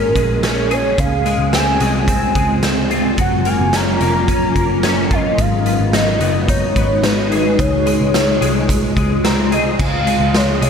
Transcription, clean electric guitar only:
0.00 0.98 A#2 medium
0.00 0.15 G#3 medium
0.00 0.42 C#4 medium
0.00 0.70 G#4 medium
0.16 1.25 G#3 soft
0.43 1.53 C#4 medium
0.71 2.90 G#4 medium
1.26 1.79 G#3 medium
1.53 2.07 C4 medium
1.81 2.35 G#3 medium
2.08 2.62 C4 medium
2.36 3.24 G#3 medium
2.63 3.24 C4 medium
2.91 5.10 F4 medium
3.18 5.41 F#3 medium
3.46 4.00 A#3 medium
3.73 4.27 C#4 medium
4.01 4.54 A#3 medium
4.29 4.82 C#4 medium
4.56 5.44 A#3 soft
4.83 5.44 C#4 medium
5.11 5.44 F4 medium
5.38 7.58 G#2 medium
5.66 6.20 B3 medium
5.93 6.47 D#4 medium
6.21 6.75 B3 medium
6.49 7.02 D#4 medium
6.76 7.64 B3 medium
7.04 7.64 D#4 medium
7.32 9.52 G#4 medium
7.86 8.41 G#3 medium
8.41 8.96 G#3 medium
8.96 10.06 G#3 medium
9.24 10.70 C4 medium
9.52 10.70 G#4 medium
10.07 10.60 G#3 medium
10.61 10.70 G#3 medium

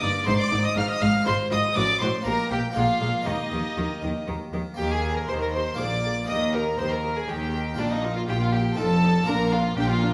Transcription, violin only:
0.03 0.27 D5 medium
0.27 0.32 C5 loud
0.39 0.66 D5 loud
0.65 0.79 D#5 medium
0.77 0.90 F5 loud
0.90 1.03 D#5 loud
1.02 1.26 F5 loud
1.27 1.51 C5 loud
1.52 1.76 D#5 loud
1.78 2.01 D5 loud
2.01 2.26 C5 medium
2.27 2.51 A#4 loud
2.52 2.60 G4 medium
2.75 3.28 F4 medium
3.26 4.28 D#4 medium
4.78 4.93 G4 medium
4.91 5.18 G#4 medium
5.17 5.31 A#4 medium
5.29 5.41 C5 medium
5.42 5.47 A#4 medium
5.55 5.79 C5 medium
5.80 6.28 D5 medium
6.29 6.55 D#5 medium
6.54 6.79 A#4 medium
6.79 6.93 C5 medium
6.92 7.18 A#4 medium
7.17 7.30 G#4 medium
7.29 7.80 G4 medium
7.79 7.91 D4 medium
7.91 8.15 D#4 medium
8.16 8.21 F4 medium
8.29 8.34 G4 medium
8.41 8.54 F4 medium
8.53 8.77 G4 medium
8.78 9.29 A4 medium
9.27 9.53 A#4 medium
9.52 9.78 F4 medium
9.76 9.89 G4 loud
9.90 10.14 F4 medium

